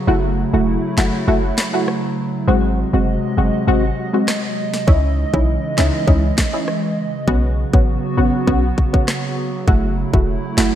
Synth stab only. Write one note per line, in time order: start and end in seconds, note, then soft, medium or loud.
0.07 0.50 A3 medium
0.07 0.50 E4 medium
0.07 0.50 F#4 loud
0.53 0.94 A3 medium
0.53 0.94 E4 medium
0.53 0.94 F#4 medium
0.97 1.25 A3 medium
0.97 1.25 E4 medium
0.97 1.26 F#4 medium
1.27 1.44 A3 medium
1.27 1.44 E4 medium
1.27 1.44 F#4 loud
1.73 1.88 A3 medium
1.73 1.88 E4 medium
1.73 1.88 F#4 medium
2.47 2.90 G#3 medium
2.47 2.90 C4 medium
2.47 2.90 F#4 loud
2.93 3.34 G#3 medium
2.93 3.34 C4 medium
2.93 3.34 F#4 medium
3.37 3.65 G#3 medium
3.37 3.65 C4 medium
3.37 3.66 F#4 medium
3.67 3.84 G#3 medium
3.67 3.84 C4 medium
3.67 3.84 F#4 loud
4.13 4.28 G#3 medium
4.13 4.28 C4 medium
4.13 4.28 F#4 medium
4.87 5.30 C#4 medium
4.87 5.30 D#4 medium
4.87 5.30 E4 loud
5.33 5.74 C#4 medium
5.33 5.74 D#4 medium
5.33 5.74 E4 medium
5.77 6.05 C#4 medium
5.77 6.05 D#4 medium
5.77 6.06 E4 medium
6.07 6.24 C#4 medium
6.07 6.24 D#4 medium
6.07 6.24 E4 loud
6.53 6.68 C#4 medium
6.53 6.68 D#4 medium
6.53 6.68 E4 medium
7.27 7.70 B3 medium
7.27 7.70 C#4 medium
7.27 7.70 F#4 loud
7.73 8.14 B3 medium
7.73 8.14 C#4 medium
7.73 8.14 F#4 medium
8.17 8.45 B3 medium
8.17 8.45 C#4 medium
8.17 8.46 F#4 medium
8.47 8.64 B3 medium
8.47 8.64 C#4 medium
8.47 8.64 F#4 loud
8.93 9.08 B3 medium
8.93 9.08 C#4 medium
8.93 9.08 F#4 medium
9.67 10.10 A3 medium
9.67 10.10 E4 medium
9.67 10.10 F#4 loud
10.13 10.54 A3 medium
10.13 10.54 E4 medium
10.13 10.54 F#4 medium
10.57 10.75 A3 medium
10.57 10.75 E4 medium
10.57 10.75 F#4 medium